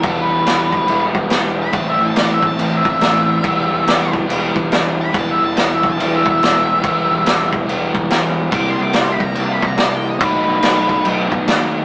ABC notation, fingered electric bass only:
X:1
M:4/4
L:1/8
Q:"Swing" 1/4=142
K:Em
V:1 name="Fingered electric bass" clef=bass
E,,, E,,, E,,, E,,, E,,, E,,, E,,,2 | A,,, A,,, A,,, A,,, A,,, A,,, A,,,2 | E,,, E,,, E,,, E,,, E,,, E,,, E,,,2 | E,,, E,,, E,,, E,,, E,,, E,,, E,,,2 |
E,,, E,,, E,,, E,,, E,,, E,,, E,,,2 | C,, C,, C,, C,, C,, C,, C,,2 | B,,, B,,, B,,, B,,, B,,, B,,, ^D,,2 |]